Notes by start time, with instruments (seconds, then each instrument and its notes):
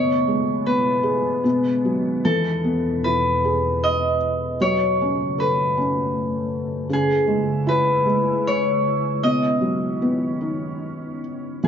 Already playing: felt piano B2, ambient pad B2 E3 G#3 B3, harp B4 C#5 D#5
0.28 felt piano G#3
0.66 felt piano B3, harp B4
1.03 felt piano G#4
1.44 felt piano B2, ambient pad D#3 C#4
1.85 felt piano F#3
2.24 ambient pad E2 B2 B3, felt piano E3, harp A4
2.64 felt piano B3
3.04 felt piano E4, harp B4
3.45 felt piano G#4
3.84 harp D#5
4.59 ambient pad F#2 C#3 A3, felt piano F#3, harp C#5
5.01 felt piano C#4
5.38 felt piano A4, harp B4
5.77 felt piano C#4
6.89 felt piano C#3, ambient pad G#3 E4, harp G#4
7.27 felt piano G#3
7.67 felt piano E4, harp B4
8.06 felt piano G#3
8.47 harp C#5
9.23 felt piano B2, ambient pad D#3 B3 C#4, harp D#5
9.61 felt piano F#3
10.02 felt piano B3
10.41 felt piano D#4
11.64 felt piano E3, harp G#4